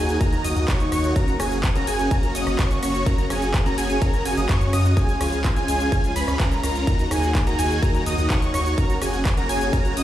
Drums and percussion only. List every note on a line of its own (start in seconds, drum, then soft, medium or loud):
0.09 closed hi-hat soft
0.09 shaker soft
0.21 kick loud
0.21 closed hi-hat medium
0.21 ride medium
0.21 shaker soft
0.33 closed hi-hat soft
0.33 shaker soft
0.44 open hi-hat loud
0.44 ride medium
0.44 shaker medium
0.56 closed hi-hat soft
0.56 shaker soft
0.68 kick loud
0.68 clap loud
0.68 closed hi-hat medium
0.68 ride medium
0.68 shaker soft
0.80 closed hi-hat soft
0.80 shaker soft
0.92 cross-stick medium
0.92 open hi-hat loud
0.92 ride medium
0.92 shaker medium
1.04 closed hi-hat soft
1.04 shaker soft
1.16 kick loud
1.16 closed hi-hat medium
1.16 ride medium
1.16 shaker soft
1.28 closed hi-hat soft
1.28 shaker soft
1.40 cross-stick medium
1.40 open hi-hat loud
1.40 ride medium
1.40 shaker medium
1.52 closed hi-hat soft
1.52 shaker soft
1.64 kick loud
1.64 clap loud
1.64 closed hi-hat medium
1.64 ride medium
1.64 shaker soft
1.75 closed hi-hat soft
1.75 shaker soft
1.87 open hi-hat loud
1.87 ride medium
1.87 shaker medium
1.99 closed hi-hat soft
1.99 shaker soft
2.11 kick loud
2.11 closed hi-hat medium
2.11 ride medium
2.11 shaker soft
2.23 closed hi-hat soft
2.23 shaker soft
2.35 open hi-hat loud
2.35 ride medium
2.35 shaker medium
2.47 cross-stick medium
2.47 closed hi-hat soft
2.47 shaker soft
2.59 kick loud
2.59 clap loud
2.59 closed hi-hat medium
2.59 ride medium
2.59 shaker soft
2.71 closed hi-hat soft
2.71 shaker soft
2.83 cross-stick medium
2.83 open hi-hat loud
2.83 ride medium
2.83 shaker medium
2.95 closed hi-hat soft
2.95 shaker soft
3.06 kick loud
3.06 closed hi-hat medium
3.06 ride medium
3.06 shaker soft
3.18 closed hi-hat soft
3.18 shaker soft
3.30 cross-stick medium
3.30 open hi-hat loud
3.30 ride medium
3.30 shaker medium
3.42 closed hi-hat soft
3.42 shaker soft
3.54 kick loud
3.54 clap loud
3.54 closed hi-hat medium
3.54 ride medium
3.54 shaker soft
3.66 closed hi-hat soft
3.66 shaker soft
3.78 open hi-hat loud
3.78 ride medium
3.78 shaker medium
3.90 closed hi-hat soft
3.90 shaker soft
4.02 kick loud
4.02 closed hi-hat medium
4.02 ride medium
4.02 shaker soft
4.14 closed hi-hat soft
4.14 shaker soft
4.25 open hi-hat loud
4.25 ride medium
4.25 shaker medium
4.37 closed hi-hat soft
4.37 shaker soft
4.49 kick loud
4.49 clap loud
4.49 closed hi-hat medium
4.49 ride medium
4.49 shaker soft
4.61 closed hi-hat soft
4.61 shaker soft
4.73 cross-stick medium
4.73 open hi-hat loud
4.73 ride medium
4.73 shaker medium
4.85 closed hi-hat soft
4.85 shaker soft
4.97 kick loud
4.97 closed hi-hat medium
4.97 ride medium
4.97 shaker soft
5.09 closed hi-hat soft
5.09 shaker soft
5.21 cross-stick medium
5.21 open hi-hat loud
5.21 ride medium
5.21 shaker medium
5.33 closed hi-hat soft
5.33 shaker soft
5.44 kick loud
5.44 clap loud
5.44 closed hi-hat medium
5.44 ride medium
5.44 shaker soft
5.56 closed hi-hat soft
5.56 shaker soft
5.68 open hi-hat loud
5.68 ride medium
5.68 shaker medium
5.80 closed hi-hat soft
5.80 shaker soft
5.92 kick loud
5.92 closed hi-hat medium
5.92 ride medium
5.92 shaker soft
6.04 closed hi-hat soft
6.04 shaker soft
6.16 open hi-hat loud
6.16 ride medium
6.16 shaker medium
6.28 cross-stick medium
6.28 closed hi-hat soft
6.28 shaker soft
6.40 kick loud
6.40 clap loud
6.40 closed hi-hat medium
6.40 ride medium
6.40 shaker soft
6.52 closed hi-hat soft
6.52 shaker soft
6.63 cross-stick medium
6.63 open hi-hat loud
6.63 ride medium
6.63 shaker medium
6.75 closed hi-hat soft
6.75 shaker soft
6.87 kick loud
6.87 closed hi-hat medium
6.87 ride medium
6.87 shaker soft
6.99 closed hi-hat soft
6.99 shaker soft
7.11 cross-stick medium
7.11 open hi-hat loud
7.11 ride medium
7.11 shaker medium
7.23 closed hi-hat soft
7.23 shaker soft
7.35 kick loud
7.35 clap loud
7.35 closed hi-hat medium
7.35 ride medium
7.35 shaker soft
7.47 closed hi-hat soft
7.47 shaker soft
7.59 open hi-hat loud
7.59 ride medium
7.59 shaker medium
7.71 closed hi-hat soft
7.71 shaker soft
7.83 kick loud
7.83 closed hi-hat medium
7.83 ride medium
7.83 shaker soft
7.95 closed hi-hat soft
7.95 shaker soft
8.06 open hi-hat loud
8.06 ride medium
8.06 shaker medium
8.18 closed hi-hat soft
8.18 shaker soft
8.30 kick loud
8.30 clap loud
8.30 closed hi-hat medium
8.30 ride medium
8.30 shaker soft
8.42 closed hi-hat soft
8.42 shaker soft
8.54 cross-stick medium
8.54 open hi-hat loud
8.54 ride medium
8.54 shaker medium
8.66 closed hi-hat soft
8.66 shaker soft
8.78 kick loud
8.78 closed hi-hat medium
8.78 ride medium
8.78 shaker soft
8.90 closed hi-hat soft
8.90 shaker soft
9.02 cross-stick medium
9.02 open hi-hat loud
9.02 ride medium
9.02 shaker medium
9.14 closed hi-hat soft
9.14 shaker soft
9.25 kick loud
9.25 clap loud
9.25 closed hi-hat medium
9.25 ride medium
9.25 shaker soft
9.37 closed hi-hat soft
9.37 shaker soft
9.49 open hi-hat loud
9.49 ride medium
9.49 shaker medium
9.61 closed hi-hat soft
9.61 shaker soft
9.73 kick loud
9.73 closed hi-hat medium
9.73 ride medium
9.73 shaker soft
9.85 closed hi-hat soft
9.85 shaker soft
9.97 open hi-hat loud
9.97 ride medium
9.97 shaker medium